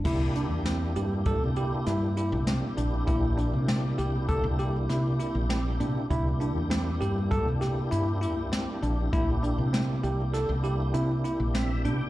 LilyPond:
<<
  \new Staff \with { instrumentName = "Tine electric piano" } { \time 5/4 \key c \mixolydian \tempo 4 = 99 e'8 d'8 c'8 g'8 a'8 g'8 e'8 e'8 c'8 d'8 | e'8 d'8 c'8 g'8 a'8 g'8 e'8 e'8 c'8 d'8 | e'8 d'8 c'8 g'8 a'8 g'8 e'8 e'8 c'8 d'8 | e'8 d'8 c'8 g'8 a'8 g'8 e'8 e'8 c'8 d'8 | }
  \new Staff \with { instrumentName = "Tonewheel organ" } { \time 5/4 \key c \mixolydian << { r1 r4 | r1 r4 | r1 r4 | r1 e''8 g''8 | } \\ { <bes d' e' g'>1~ <bes d' e' g'>4~ | <bes d' e' g'>1~ <bes d' e' g'>4 | <bes d' e' g'>1~ <bes d' e' g'>4~ | <bes d' e' g'>1~ <bes d' e' g'>4 | } >> }
  \new Staff \with { instrumentName = "Fretless electric bass" } { \clef bass \time 5/4 \key c \mixolydian c,8. e,8. g,8. c8. g,8. c,8 r16 bes,,8 | bes,,8. c8. c,8. c,8. c8 r16 bes,,8. c16 r16 | c,8. e,8. g,8. c8. g,8. c,8 r16 bes,,8 | bes,,8. c8. c,8. c,8. c8 r16 bes,,8. c16 r16 | }
  \new DrumStaff \with { instrumentName = "Drums" } \drummode { \time 5/4 <cymc bd>8 hh8 <hh sn>8 hh8 <hh bd>8 hh8 <hh sn>8 hh8 <hh sn>8 hh8 | <hh bd>8 hh8 <hh sn>8 hh8 <hh bd>8 hh8 <hh sn>8 hh8 <hh sn>8 hh8 | <hh bd>8 hh8 <hh sn>8 hh8 <hh bd>8 <hh sn>8 hh8 hh8 <hh sn>8 hh8 | <hh bd>8 hh8 <hh sn>8 hh8 <hh sn>8 hh8 hh8 hh8 <hh sn>8 hh8 | }
>>